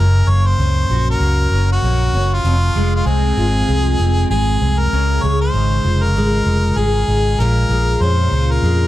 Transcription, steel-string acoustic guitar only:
Already playing: F#2 C#4
0.29 A#3
0.60 C#4
0.91 F#4
1.21 A#3
1.53 C#4
1.84 A#3
2.15 C#4
2.45 F2
2.76 G#3
3.06 C4
3.37 F4
3.68 G#3
4.00 C4
4.31 G#3
4.62 C4
4.93 C#3
5.23 G#3
5.54 D#4
5.84 F4
6.17 G#3
6.46 D#4
6.78 G#3
7.08 D#4
7.40 A#2
7.70 G#3
8.02 C#4
8.33 F4
8.64 G#3

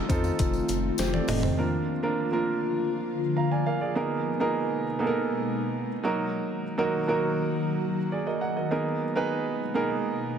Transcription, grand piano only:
Already playing: C4 D#4 F4 A4
0.09 C4 D#4 F4 A4
0.99 G4 C5
1.13 A4 D5
1.28 A4 D#5
1.43 G4 C5
1.57 F3 A#3 D4 F4 A#4
2.02 F3 A#3 D4 F4 A#4
2.32 F3 A#3 D4 F4 A#4
3.37 F5 A#5
3.51 D5 G#5
3.66 A#4 F5
3.81 G#4 D5
3.95 A#3 B3 D#4 G#4 A#4
4.40 A#3 B3 D#4 G#4 A#4
4.99 A#3 B3 D#4 G#4 A4
5.07 A#4
6.03 F#3 A#3 D#4 F#4 A#4
6.78 F#3 A#3 D#4 F#4 A#4
7.08 F#3 A#3 D#4 F#4 A#4
8.12 G#4 D5
8.27 A#4 D#5
8.41 F#5
8.57 A#4 D#5
8.71 A#3 B3 D#4 G#4 A#4
9.15 B3 D#4 G#4 A#4 B4
9.74 A#3 B3 D#4 G#4 A#4

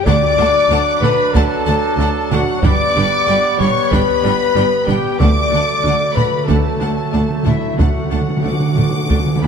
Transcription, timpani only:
0.06 D3
5.19 D3
5.35 D3
5.42 D3
5.49 D3
5.57 D3
5.72 D3
5.80 D3
5.87 D3
5.94 D3
6.01 D3
6.09 D3
6.24 D3
6.31 D3
6.39 D3
6.46 D3
6.54 D3
6.61 D3
6.68 D3
6.75 D3
6.83 D3
6.91 D3
6.98 D3
7.05 D3
7.14 D3
7.21 D3
7.29 D3
7.36 D3
7.43 D3
7.51 D3
7.58 D3
7.66 D3
7.74 D3
7.82 D3
7.89 D3
7.98 D3
8.05 D3
8.13 D3
8.21 D3
8.29 D3
8.37 D3
8.44 D3
8.52 D3
8.60 D3
8.68 D3
8.75 D3
8.83 D3
8.89 D3
8.98 D3
9.05 D3
9.12 D3
9.19 D3
9.27 D3
9.36 D3
9.44 D3

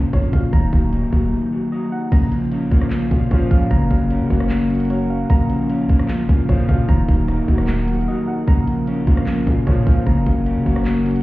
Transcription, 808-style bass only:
Already playing: A#1
0.13 F2
0.33 A#2
0.53 D#1
0.73 D#1
1.03 C#1
1.13 D#1
2.12 A#1
2.71 A#1
3.11 A#2
3.31 A#2
3.51 A#1
3.71 F#1
3.91 F#1
4.20 C#3
4.30 F#1
5.30 A#1
5.89 A#1
6.19 A1
6.29 A#1
6.49 F2
6.69 A#2
6.89 D#1
7.09 D#1
7.38 C#1
7.48 D#1
8.48 A#1
9.07 A#1
9.47 A#2
9.67 A#2
9.87 A#1
10.07 F#1
10.26 F#1
10.56 C#3
10.66 F#1

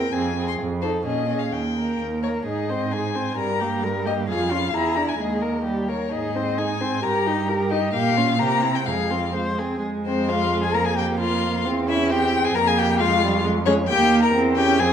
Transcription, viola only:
Already playing: C4
0.13 C4
0.36 C4
0.83 D#4
1.06 C#4
1.29 C#4
1.77 A#3
2.25 A#3
2.47 D#4
2.70 C4
2.93 D#4
3.16 C4
3.38 G3
3.61 A#3
3.83 G3
4.06 A#3
4.30 F4
4.52 C#4
4.74 E4
4.97 D4
5.19 G#3
5.42 A#3
5.65 G3
5.89 A#3
6.12 D#4
6.35 C4
6.58 D#4
6.81 C4
7.04 G4
7.27 D#4
7.49 G4
7.71 D#4
7.94 A#3
8.18 C#4
8.40 A#3
8.64 C4
8.87 G#3
9.11 C4
9.34 G#3
9.59 C4
9.83 G#3
10.75 A#3
11.65 C4
11.88 C#4
12.11 C4
12.57 A#3
13.01 G#3
13.23 G3
13.45 G#3
13.67 G#3
13.90 A#3
14.34 C4
14.57 C#4
14.79 C4

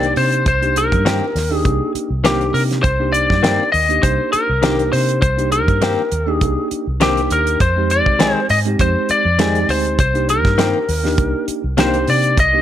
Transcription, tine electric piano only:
Already playing: A#3 D4 D#4 G4
0.62 A#3 D4 D#4 G4
1.50 A#3 D4 D#4 G4
2.23 A#3 D4 D#4 G4
3.00 A#3 D4 D#4 G4
3.89 A#3 D4 D#4 G4
4.62 A#3 D4 D#4 G4
5.37 A#3 D4 D#4 G4
6.27 A#3 D4 D#4 G4
7.00 A#3 D4 D#4 G4
7.76 G#3 C4 D#4 G4
8.65 G#3 C4 D#4 G4
9.38 G#3 C4 D#4 G4
10.14 A#3 D4 D#4 G4
11.04 A#3 D4 D#4 G4
11.77 A#3 D4 D#4 G4
12.53 A#3 D4 D#4 G4

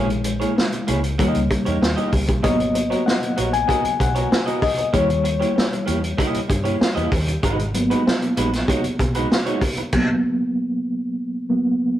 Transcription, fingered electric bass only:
Already playing: A#1
0.89 C#2
1.19 D#2
1.36 C#2
1.67 E2
1.82 D#2
2.13 C#2
2.29 B1
2.44 G#1
3.38 A#1
3.84 muted fingered electric bass stroke
4.00 B1
4.94 D#2
5.88 E2
6.35 muted fingered electric bass stroke
6.50 G2
6.97 E2
7.12 D#2
7.43 G#1
8.37 A#1
8.85 muted fingered electric bass stroke
9.00 B1

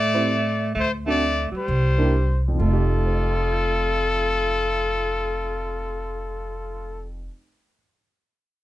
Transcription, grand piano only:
0.14 C4 E4 G4 C5
1.06 C4 D4 F#4 A4
1.98 A#3 D4 E4 G4
2.48 F2
2.54 F3
2.61 A3
2.67 D#4
2.73 G4
3.06 C5
3.14 D#5
3.22 G5
3.31 C6
3.40 D#6
3.52 G6
3.63 C7

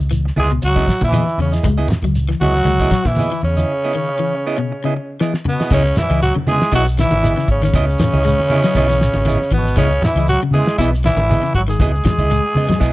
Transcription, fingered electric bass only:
0.00 C#2
0.37 C#2
0.63 C#2
1.02 A#2
1.38 E2
1.64 C#2
2.02 C#2
2.41 C#2
2.65 C#2
3.05 A#2
3.43 E2
5.71 C#2
6.10 C#2
6.47 C#3
6.72 B1
7.11 G#1
7.48 G#1
7.74 C#2
8.13 C#2
8.50 C#3
8.74 B1
9.14 G#1
9.51 G#1
9.77 C#2
10.15 C#2
10.51 C#3
10.78 B1
11.16 G#1
11.54 G#1
11.79 C#2
12.19 C#2
12.56 C#3
12.81 B1

